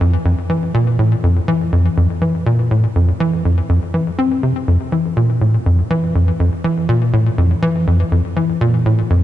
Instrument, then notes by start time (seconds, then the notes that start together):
analog synth bass
0.01 F2
0.25 F2
0.49 E3
0.74 A#2
0.99 A2
1.23 F2
1.48 E3
1.72 F2
1.97 F2
2.22 E3
2.46 A#2
2.71 A2
2.96 F2
3.20 E3
3.45 F2
3.69 F2
3.94 E3
4.18 C4
4.43 C3
4.68 F2
4.92 E3
5.17 A#2
5.41 A2
5.66 F2
5.90 E3
6.15 F2
6.40 F2
6.64 E3
6.89 A#2
7.13 A2
7.38 F2
7.62 E3
7.87 F2
8.12 F2
8.36 E3
8.61 A#2
8.86 A2
9.10 F2